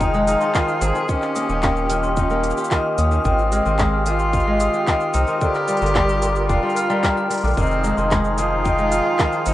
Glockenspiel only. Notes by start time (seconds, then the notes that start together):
0.00 G5
0.28 F6
0.40 C6
0.67 F6
0.95 C6
1.35 D#6
1.63 G5
1.90 F6
2.04 C6
2.31 F6
2.58 C6
2.99 D#6
3.25 G5
3.53 F6
3.66 C6
3.94 F6
4.20 C6
4.61 D#6
4.87 G5
5.15 F6
5.29 C6
5.56 F6
5.83 C6
6.22 D6
6.49 G5
6.76 F6
6.90 A#5
7.05 F6
7.18 F6
7.44 D6
7.70 F6
7.97 C6
8.38 D#6
8.64 G5
8.92 F6
9.06 C6
9.33 F6